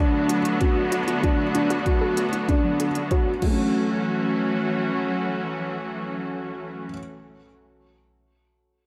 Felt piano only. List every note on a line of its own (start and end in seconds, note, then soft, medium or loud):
0.00 0.37 D4 medium
0.61 1.00 F#4 medium
1.23 1.43 D4 medium
1.55 1.74 D4 medium
1.86 2.25 F#4 medium
2.48 2.87 D4 medium
3.11 3.30 F#4 medium
3.42 6.85 F#3 medium
3.46 6.89 A3 medium
3.46 6.93 C#4 medium
3.54 6.97 F#4 medium